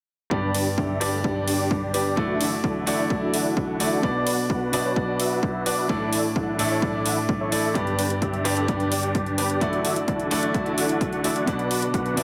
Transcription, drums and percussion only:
0.31 kick loud
0.55 open hi-hat medium
0.78 kick loud
1.01 open hi-hat medium
1.24 kick loud
1.48 open hi-hat medium
1.71 kick loud
1.94 open hi-hat medium
2.17 kick loud
2.41 open hi-hat medium
2.64 kick loud
2.87 open hi-hat loud
3.10 kick loud
3.34 open hi-hat loud
3.57 kick loud
3.80 open hi-hat loud
4.03 kick loud
4.27 open hi-hat loud
4.50 kick loud
4.73 open hi-hat loud
4.96 kick loud
5.20 open hi-hat loud
5.43 kick loud
5.66 open hi-hat loud
5.89 kick loud
6.13 open hi-hat loud
6.36 kick loud
6.59 open hi-hat medium
6.82 kick loud
7.06 open hi-hat loud
7.29 kick loud
7.52 open hi-hat loud
7.75 kick loud
7.75 closed hi-hat soft
7.87 closed hi-hat soft
7.99 open hi-hat loud
8.10 closed hi-hat soft
8.22 kick loud
8.22 closed hi-hat soft
8.34 closed hi-hat soft
8.45 open hi-hat medium
8.57 closed hi-hat soft
8.68 kick loud
8.68 closed hi-hat soft
8.80 closed hi-hat soft
8.92 open hi-hat loud
9.03 closed hi-hat soft
9.15 kick loud
9.15 closed hi-hat soft
9.26 closed hi-hat soft
9.38 open hi-hat medium
9.50 closed hi-hat soft
9.61 kick loud
9.61 closed hi-hat soft
9.73 closed hi-hat soft
9.85 open hi-hat medium
9.96 closed hi-hat soft
10.08 kick loud
10.08 closed hi-hat soft
10.20 closed hi-hat soft
10.31 open hi-hat medium
10.43 closed hi-hat soft
10.54 kick loud
10.54 closed hi-hat soft
10.66 closed hi-hat soft
10.78 open hi-hat medium
10.89 closed hi-hat soft
11.01 kick loud
11.01 closed hi-hat soft
11.13 closed hi-hat soft
11.24 open hi-hat medium
11.36 closed hi-hat soft
11.47 kick loud
11.47 closed hi-hat medium
11.59 closed hi-hat soft
11.71 open hi-hat medium
11.82 closed hi-hat medium
11.94 kick loud
11.94 closed hi-hat medium
12.06 closed hi-hat soft
12.17 open hi-hat medium

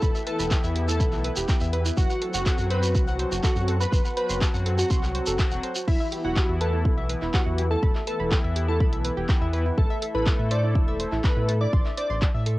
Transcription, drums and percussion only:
0.02 kick loud
0.02 shekere medium
0.15 shekere soft
0.27 closed hi-hat loud
0.39 shekere medium
0.51 kick loud
0.51 clap loud
0.51 shekere medium
0.64 shekere soft
0.75 closed hi-hat loud
0.88 shekere medium
1.00 kick loud
1.00 shekere medium
1.12 clap soft
1.12 shekere soft
1.24 closed hi-hat loud
1.36 shekere medium
1.48 kick loud
1.48 clap loud
1.48 shekere medium
1.60 shekere soft
1.73 closed hi-hat loud
1.86 shekere medium
1.97 kick loud
1.97 shekere medium
2.10 shekere soft
2.22 closed hi-hat loud
2.34 shekere medium
2.46 kick loud
2.46 clap loud
2.46 shekere medium
2.58 shekere soft
2.71 closed hi-hat loud
2.83 shekere medium
2.95 kick loud
2.95 shekere medium
3.08 shekere soft
3.19 closed hi-hat loud
3.32 shekere medium
3.44 kick loud
3.44 clap loud
3.44 shekere medium
3.56 shekere soft
3.68 closed hi-hat loud
3.81 shekere medium
3.92 kick loud
3.92 shekere medium
4.05 shekere soft
4.17 closed hi-hat loud
4.29 shekere medium
4.41 kick loud
4.41 clap loud
4.41 shekere medium
4.54 shekere soft
4.66 closed hi-hat loud
4.78 shekere medium
4.90 kick loud
4.90 shekere medium
5.03 clap soft
5.03 shekere soft
5.14 closed hi-hat loud
5.26 shekere medium
5.39 kick loud
5.39 clap loud
5.39 shekere medium
5.51 shekere soft
5.63 closed hi-hat loud
5.75 shekere medium
5.88 kick loud
5.88 crash loud
6.12 closed hi-hat loud
6.36 kick loud
6.36 clap loud
6.61 closed hi-hat loud
6.85 kick loud
7.10 closed hi-hat loud
7.22 clap soft
7.34 kick loud
7.34 clap loud
7.58 closed hi-hat loud
7.83 kick loud
7.95 clap soft
8.07 closed hi-hat loud
8.31 kick loud
8.31 clap loud
8.56 closed hi-hat loud
8.80 kick loud
8.93 closed hi-hat medium
9.05 closed hi-hat loud
9.29 kick loud
9.29 clap loud
9.53 closed hi-hat loud
9.78 kick loud
10.02 closed hi-hat loud
10.27 kick loud
10.27 clap loud
10.51 closed hi-hat loud
10.75 kick loud
11.00 closed hi-hat loud
11.12 clap soft
11.24 kick loud
11.24 clap loud
11.49 closed hi-hat loud
11.73 kick loud
11.86 clap soft
11.97 closed hi-hat loud
12.22 kick loud
12.22 clap loud
12.46 closed hi-hat loud

